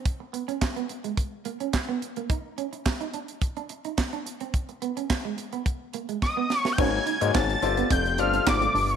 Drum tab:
CC |----------------|----------------|----------------|x---------------|
HH |x-xx-xxxx-xx--xx|x-xx-xxxxxxx-xxx|xxxx--xxx-xx----|--xx-xxxxxxx-xox|
CP |----x-------x---|----x-------x---|----x-----------|----x-------x---|
SD |----o-------o---|----o-------o---|----o-------o-oo|----o-------o---|
BD |o---o---o---o---|o---o---o---o---|o---o---o---o---|o---o---o---o---|